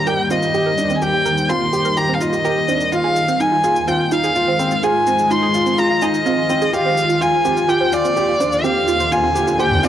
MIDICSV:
0, 0, Header, 1, 6, 480
1, 0, Start_track
1, 0, Tempo, 476190
1, 1030, Time_signature, 4, 2, 24, 8
1, 9962, End_track
2, 0, Start_track
2, 0, Title_t, "Violin"
2, 0, Program_c, 0, 40
2, 70, Note_on_c, 0, 79, 89
2, 304, Note_off_c, 0, 79, 0
2, 310, Note_on_c, 0, 75, 86
2, 960, Note_on_c, 0, 80, 70
2, 975, Note_off_c, 0, 75, 0
2, 1029, Note_on_c, 0, 79, 99
2, 1044, Note_off_c, 0, 80, 0
2, 1507, Note_on_c, 0, 84, 93
2, 1522, Note_off_c, 0, 79, 0
2, 1985, Note_on_c, 0, 82, 98
2, 2000, Note_off_c, 0, 84, 0
2, 2156, Note_on_c, 0, 77, 71
2, 2171, Note_off_c, 0, 82, 0
2, 2224, Note_on_c, 0, 75, 90
2, 2239, Note_off_c, 0, 77, 0
2, 2944, Note_on_c, 0, 77, 104
2, 2959, Note_off_c, 0, 75, 0
2, 3430, Note_on_c, 0, 80, 98
2, 3445, Note_off_c, 0, 77, 0
2, 3907, Note_on_c, 0, 79, 89
2, 3922, Note_off_c, 0, 80, 0
2, 4147, Note_off_c, 0, 79, 0
2, 4153, Note_on_c, 0, 77, 92
2, 4871, Note_on_c, 0, 80, 100
2, 4886, Note_off_c, 0, 77, 0
2, 5351, Note_on_c, 0, 84, 90
2, 5366, Note_off_c, 0, 80, 0
2, 5828, Note_on_c, 0, 82, 93
2, 5843, Note_off_c, 0, 84, 0
2, 6071, Note_on_c, 0, 75, 89
2, 6087, Note_off_c, 0, 82, 0
2, 6788, Note_on_c, 0, 77, 98
2, 6803, Note_off_c, 0, 75, 0
2, 7271, Note_on_c, 0, 80, 90
2, 7286, Note_off_c, 0, 77, 0
2, 7749, Note_on_c, 0, 79, 90
2, 7764, Note_off_c, 0, 80, 0
2, 7991, Note_on_c, 0, 74, 95
2, 8006, Note_off_c, 0, 79, 0
2, 8710, Note_on_c, 0, 77, 99
2, 8725, Note_off_c, 0, 74, 0
2, 9190, Note_on_c, 0, 80, 100
2, 9205, Note_off_c, 0, 77, 0
2, 9669, Note_on_c, 0, 79, 100
2, 9684, Note_off_c, 0, 80, 0
2, 9914, Note_on_c, 0, 74, 95
2, 9930, Note_off_c, 0, 79, 0
2, 9962, Note_off_c, 0, 74, 0
2, 9962, End_track
3, 0, Start_track
3, 0, Title_t, "Felt piano"
3, 0, Program_c, 1, 0
3, 71, Note_on_c, 1, 67, 82
3, 194, Note_off_c, 1, 67, 0
3, 309, Note_on_c, 1, 65, 73
3, 432, Note_off_c, 1, 65, 0
3, 548, Note_on_c, 1, 67, 76
3, 672, Note_off_c, 1, 67, 0
3, 787, Note_on_c, 1, 62, 71
3, 911, Note_off_c, 1, 62, 0
3, 1028, Note_on_c, 1, 67, 81
3, 1274, Note_off_c, 1, 67, 0
3, 1506, Note_on_c, 1, 65, 75
3, 1630, Note_off_c, 1, 65, 0
3, 1745, Note_on_c, 1, 67, 70
3, 1870, Note_off_c, 1, 67, 0
3, 1986, Note_on_c, 1, 67, 85
3, 2110, Note_off_c, 1, 67, 0
3, 2226, Note_on_c, 1, 65, 73
3, 2350, Note_off_c, 1, 65, 0
3, 2466, Note_on_c, 1, 67, 78
3, 2590, Note_off_c, 1, 67, 0
3, 2706, Note_on_c, 1, 62, 73
3, 2830, Note_off_c, 1, 62, 0
3, 2948, Note_on_c, 1, 65, 80
3, 3195, Note_off_c, 1, 65, 0
3, 3426, Note_on_c, 1, 63, 74
3, 3550, Note_off_c, 1, 63, 0
3, 3668, Note_on_c, 1, 65, 69
3, 3791, Note_off_c, 1, 65, 0
3, 3905, Note_on_c, 1, 65, 91
3, 4029, Note_off_c, 1, 65, 0
3, 4148, Note_on_c, 1, 63, 77
3, 4272, Note_off_c, 1, 63, 0
3, 4387, Note_on_c, 1, 65, 80
3, 4511, Note_off_c, 1, 65, 0
3, 4629, Note_on_c, 1, 60, 76
3, 4752, Note_off_c, 1, 60, 0
3, 4868, Note_on_c, 1, 65, 78
3, 5115, Note_off_c, 1, 65, 0
3, 5346, Note_on_c, 1, 63, 80
3, 5470, Note_off_c, 1, 63, 0
3, 5587, Note_on_c, 1, 65, 73
3, 5711, Note_off_c, 1, 65, 0
3, 5827, Note_on_c, 1, 65, 86
3, 5951, Note_off_c, 1, 65, 0
3, 6069, Note_on_c, 1, 63, 75
3, 6193, Note_off_c, 1, 63, 0
3, 6308, Note_on_c, 1, 65, 79
3, 6431, Note_off_c, 1, 65, 0
3, 6546, Note_on_c, 1, 60, 70
3, 6670, Note_off_c, 1, 60, 0
3, 6787, Note_on_c, 1, 67, 82
3, 7034, Note_off_c, 1, 67, 0
3, 7266, Note_on_c, 1, 65, 79
3, 7390, Note_off_c, 1, 65, 0
3, 7508, Note_on_c, 1, 67, 69
3, 7632, Note_off_c, 1, 67, 0
3, 7746, Note_on_c, 1, 67, 94
3, 7870, Note_off_c, 1, 67, 0
3, 7986, Note_on_c, 1, 65, 73
3, 8110, Note_off_c, 1, 65, 0
3, 8230, Note_on_c, 1, 67, 80
3, 8353, Note_off_c, 1, 67, 0
3, 8468, Note_on_c, 1, 62, 77
3, 8592, Note_off_c, 1, 62, 0
3, 8710, Note_on_c, 1, 67, 83
3, 8956, Note_off_c, 1, 67, 0
3, 9191, Note_on_c, 1, 65, 84
3, 9314, Note_off_c, 1, 65, 0
3, 9428, Note_on_c, 1, 67, 77
3, 9552, Note_off_c, 1, 67, 0
3, 9668, Note_on_c, 1, 67, 89
3, 9792, Note_off_c, 1, 67, 0
3, 9908, Note_on_c, 1, 65, 81
3, 9962, Note_off_c, 1, 65, 0
3, 9962, End_track
4, 0, Start_track
4, 0, Title_t, "Synth arpeggio sound"
4, 0, Program_c, 2, 84
4, 69, Note_on_c, 2, 70, 103
4, 97, Note_off_c, 2, 70, 0
4, 308, Note_on_c, 2, 60, 73
4, 379, Note_off_c, 2, 60, 0
4, 550, Note_on_c, 2, 67, 76
4, 578, Note_off_c, 2, 67, 0
4, 670, Note_on_c, 2, 70, 94
4, 698, Note_off_c, 2, 70, 0
4, 909, Note_on_c, 2, 60, 71
4, 980, Note_off_c, 2, 60, 0
4, 1146, Note_on_c, 2, 67, 70
4, 1176, Note_off_c, 2, 67, 0
4, 1266, Note_on_c, 2, 70, 94
4, 1296, Note_off_c, 2, 70, 0
4, 1506, Note_on_c, 2, 60, 74
4, 1578, Note_off_c, 2, 60, 0
4, 1746, Note_on_c, 2, 67, 71
4, 1776, Note_off_c, 2, 67, 0
4, 1866, Note_on_c, 2, 70, 91
4, 1896, Note_off_c, 2, 70, 0
4, 2109, Note_on_c, 2, 60, 69
4, 2179, Note_off_c, 2, 60, 0
4, 2348, Note_on_c, 2, 67, 69
4, 2377, Note_off_c, 2, 67, 0
4, 2468, Note_on_c, 2, 70, 95
4, 2497, Note_off_c, 2, 70, 0
4, 2705, Note_on_c, 2, 60, 72
4, 2777, Note_off_c, 2, 60, 0
4, 2946, Note_on_c, 2, 65, 79
4, 2976, Note_off_c, 2, 65, 0
4, 3066, Note_on_c, 2, 68, 91
4, 3096, Note_off_c, 2, 68, 0
4, 3308, Note_on_c, 2, 60, 73
4, 3379, Note_off_c, 2, 60, 0
4, 3546, Note_on_c, 2, 65, 76
4, 3576, Note_off_c, 2, 65, 0
4, 3666, Note_on_c, 2, 68, 91
4, 3696, Note_off_c, 2, 68, 0
4, 3906, Note_on_c, 2, 60, 81
4, 3978, Note_off_c, 2, 60, 0
4, 4151, Note_on_c, 2, 65, 79
4, 4179, Note_off_c, 2, 65, 0
4, 4272, Note_on_c, 2, 68, 96
4, 4299, Note_off_c, 2, 68, 0
4, 4512, Note_on_c, 2, 60, 74
4, 4581, Note_off_c, 2, 60, 0
4, 4754, Note_on_c, 2, 65, 72
4, 4780, Note_off_c, 2, 65, 0
4, 4872, Note_on_c, 2, 68, 100
4, 4899, Note_off_c, 2, 68, 0
4, 5112, Note_on_c, 2, 60, 74
4, 5181, Note_off_c, 2, 60, 0
4, 5352, Note_on_c, 2, 65, 77
4, 5379, Note_off_c, 2, 65, 0
4, 5470, Note_on_c, 2, 68, 97
4, 5498, Note_off_c, 2, 68, 0
4, 5710, Note_on_c, 2, 60, 76
4, 5780, Note_off_c, 2, 60, 0
4, 5951, Note_on_c, 2, 65, 77
4, 5978, Note_off_c, 2, 65, 0
4, 6068, Note_on_c, 2, 68, 97
4, 6097, Note_off_c, 2, 68, 0
4, 6308, Note_on_c, 2, 60, 80
4, 6379, Note_off_c, 2, 60, 0
4, 6550, Note_on_c, 2, 65, 78
4, 6578, Note_off_c, 2, 65, 0
4, 6671, Note_on_c, 2, 68, 101
4, 6699, Note_off_c, 2, 68, 0
4, 6909, Note_on_c, 2, 60, 70
4, 6980, Note_off_c, 2, 60, 0
4, 7149, Note_on_c, 2, 65, 67
4, 7178, Note_off_c, 2, 65, 0
4, 7266, Note_on_c, 2, 72, 87
4, 7315, Note_off_c, 2, 72, 0
4, 7508, Note_on_c, 2, 60, 74
4, 7579, Note_off_c, 2, 60, 0
4, 7752, Note_on_c, 2, 65, 85
4, 7779, Note_off_c, 2, 65, 0
4, 7868, Note_on_c, 2, 72, 74
4, 7916, Note_off_c, 2, 72, 0
4, 8110, Note_on_c, 2, 60, 72
4, 8180, Note_off_c, 2, 60, 0
4, 8351, Note_on_c, 2, 65, 68
4, 8379, Note_off_c, 2, 65, 0
4, 8472, Note_on_c, 2, 72, 79
4, 8518, Note_off_c, 2, 72, 0
4, 8713, Note_on_c, 2, 60, 79
4, 8782, Note_off_c, 2, 60, 0
4, 8951, Note_on_c, 2, 65, 75
4, 8979, Note_off_c, 2, 65, 0
4, 9075, Note_on_c, 2, 72, 72
4, 9119, Note_off_c, 2, 72, 0
4, 9311, Note_on_c, 2, 60, 76
4, 9380, Note_off_c, 2, 60, 0
4, 9551, Note_on_c, 2, 65, 71
4, 9579, Note_off_c, 2, 65, 0
4, 9672, Note_on_c, 2, 72, 83
4, 9718, Note_off_c, 2, 72, 0
4, 9911, Note_on_c, 2, 60, 75
4, 9962, Note_off_c, 2, 60, 0
4, 9962, End_track
5, 0, Start_track
5, 0, Title_t, "Ambient pad"
5, 0, Program_c, 3, 92
5, 0, Note_on_c, 3, 51, 71
5, 0, Note_on_c, 3, 55, 71
5, 0, Note_on_c, 3, 58, 77
5, 0, Note_on_c, 3, 72, 80
5, 3171, Note_on_c, 3, 65, 82
5, 3241, Note_on_c, 3, 56, 83
5, 3949, Note_off_c, 3, 58, 0
5, 3987, Note_off_c, 3, 55, 0
5, 6788, Note_on_c, 3, 39, 73
5, 6789, Note_off_c, 3, 72, 0
5, 6790, Note_off_c, 3, 56, 0
5, 6791, Note_off_c, 3, 51, 0
5, 7291, Note_on_c, 3, 50, 86
5, 7492, Note_on_c, 3, 58, 71
5, 7496, Note_on_c, 3, 72, 78
5, 9962, Note_off_c, 3, 39, 0
5, 9962, Note_off_c, 3, 50, 0
5, 9962, Note_off_c, 3, 58, 0
5, 9962, Note_off_c, 3, 65, 0
5, 9962, Note_off_c, 3, 72, 0
5, 9962, End_track
6, 0, Start_track
6, 0, Title_t, "Drums"
6, 68, Note_on_c, 9, 82, 25
6, 169, Note_off_c, 9, 82, 0
6, 308, Note_on_c, 9, 82, 72
6, 409, Note_off_c, 9, 82, 0
6, 429, Note_on_c, 9, 82, 37
6, 529, Note_off_c, 9, 82, 0
6, 548, Note_on_c, 9, 82, 27
6, 648, Note_off_c, 9, 82, 0
6, 786, Note_on_c, 9, 82, 64
6, 887, Note_off_c, 9, 82, 0
6, 906, Note_on_c, 9, 82, 37
6, 1007, Note_off_c, 9, 82, 0
6, 1027, Note_on_c, 9, 82, 28
6, 1128, Note_off_c, 9, 82, 0
6, 1269, Note_on_c, 9, 82, 68
6, 1369, Note_off_c, 9, 82, 0
6, 1387, Note_on_c, 9, 82, 39
6, 1488, Note_off_c, 9, 82, 0
6, 1507, Note_on_c, 9, 82, 30
6, 1608, Note_off_c, 9, 82, 0
6, 1747, Note_on_c, 9, 82, 68
6, 1848, Note_off_c, 9, 82, 0
6, 1867, Note_on_c, 9, 82, 37
6, 1968, Note_off_c, 9, 82, 0
6, 1987, Note_on_c, 9, 82, 30
6, 2088, Note_off_c, 9, 82, 0
6, 2228, Note_on_c, 9, 82, 69
6, 2329, Note_off_c, 9, 82, 0
6, 2348, Note_on_c, 9, 82, 39
6, 2449, Note_off_c, 9, 82, 0
6, 2468, Note_on_c, 9, 82, 28
6, 2569, Note_off_c, 9, 82, 0
6, 2708, Note_on_c, 9, 82, 69
6, 2809, Note_off_c, 9, 82, 0
6, 2827, Note_on_c, 9, 82, 39
6, 2928, Note_off_c, 9, 82, 0
6, 2948, Note_on_c, 9, 82, 28
6, 3048, Note_off_c, 9, 82, 0
6, 3188, Note_on_c, 9, 82, 69
6, 3288, Note_off_c, 9, 82, 0
6, 3309, Note_on_c, 9, 82, 40
6, 3410, Note_off_c, 9, 82, 0
6, 3428, Note_on_c, 9, 82, 31
6, 3529, Note_off_c, 9, 82, 0
6, 3667, Note_on_c, 9, 82, 70
6, 3768, Note_off_c, 9, 82, 0
6, 3788, Note_on_c, 9, 82, 37
6, 3889, Note_off_c, 9, 82, 0
6, 3908, Note_on_c, 9, 82, 30
6, 4009, Note_off_c, 9, 82, 0
6, 4147, Note_on_c, 9, 82, 74
6, 4248, Note_off_c, 9, 82, 0
6, 4269, Note_on_c, 9, 82, 40
6, 4370, Note_off_c, 9, 82, 0
6, 4387, Note_on_c, 9, 82, 27
6, 4488, Note_off_c, 9, 82, 0
6, 4629, Note_on_c, 9, 82, 69
6, 4729, Note_off_c, 9, 82, 0
6, 4746, Note_on_c, 9, 82, 40
6, 4847, Note_off_c, 9, 82, 0
6, 4867, Note_on_c, 9, 82, 29
6, 4968, Note_off_c, 9, 82, 0
6, 5107, Note_on_c, 9, 82, 66
6, 5207, Note_off_c, 9, 82, 0
6, 5228, Note_on_c, 9, 82, 43
6, 5328, Note_off_c, 9, 82, 0
6, 5349, Note_on_c, 9, 82, 31
6, 5449, Note_off_c, 9, 82, 0
6, 5586, Note_on_c, 9, 82, 77
6, 5687, Note_off_c, 9, 82, 0
6, 5707, Note_on_c, 9, 82, 36
6, 5807, Note_off_c, 9, 82, 0
6, 5826, Note_on_c, 9, 82, 30
6, 5927, Note_off_c, 9, 82, 0
6, 6065, Note_on_c, 9, 82, 76
6, 6166, Note_off_c, 9, 82, 0
6, 6188, Note_on_c, 9, 82, 42
6, 6289, Note_off_c, 9, 82, 0
6, 6310, Note_on_c, 9, 82, 28
6, 6410, Note_off_c, 9, 82, 0
6, 6548, Note_on_c, 9, 82, 66
6, 6649, Note_off_c, 9, 82, 0
6, 6668, Note_on_c, 9, 82, 40
6, 6769, Note_off_c, 9, 82, 0
6, 6789, Note_on_c, 9, 82, 29
6, 6890, Note_off_c, 9, 82, 0
6, 7030, Note_on_c, 9, 82, 71
6, 7130, Note_off_c, 9, 82, 0
6, 7151, Note_on_c, 9, 82, 41
6, 7252, Note_off_c, 9, 82, 0
6, 7271, Note_on_c, 9, 82, 30
6, 7372, Note_off_c, 9, 82, 0
6, 7511, Note_on_c, 9, 82, 67
6, 7611, Note_off_c, 9, 82, 0
6, 7631, Note_on_c, 9, 82, 36
6, 7732, Note_off_c, 9, 82, 0
6, 7751, Note_on_c, 9, 82, 30
6, 7852, Note_off_c, 9, 82, 0
6, 7990, Note_on_c, 9, 82, 74
6, 8091, Note_off_c, 9, 82, 0
6, 8113, Note_on_c, 9, 82, 41
6, 8214, Note_off_c, 9, 82, 0
6, 8232, Note_on_c, 9, 82, 27
6, 8333, Note_off_c, 9, 82, 0
6, 8473, Note_on_c, 9, 82, 65
6, 8574, Note_off_c, 9, 82, 0
6, 8592, Note_on_c, 9, 82, 39
6, 8693, Note_off_c, 9, 82, 0
6, 8714, Note_on_c, 9, 82, 26
6, 8815, Note_off_c, 9, 82, 0
6, 8952, Note_on_c, 9, 82, 66
6, 9053, Note_off_c, 9, 82, 0
6, 9072, Note_on_c, 9, 82, 41
6, 9173, Note_off_c, 9, 82, 0
6, 9192, Note_on_c, 9, 82, 31
6, 9293, Note_off_c, 9, 82, 0
6, 9432, Note_on_c, 9, 82, 73
6, 9533, Note_off_c, 9, 82, 0
6, 9551, Note_on_c, 9, 82, 39
6, 9652, Note_off_c, 9, 82, 0
6, 9673, Note_on_c, 9, 82, 29
6, 9774, Note_off_c, 9, 82, 0
6, 9791, Note_on_c, 9, 45, 61
6, 9892, Note_off_c, 9, 45, 0
6, 9912, Note_on_c, 9, 82, 73
6, 9962, Note_off_c, 9, 82, 0
6, 9962, End_track
0, 0, End_of_file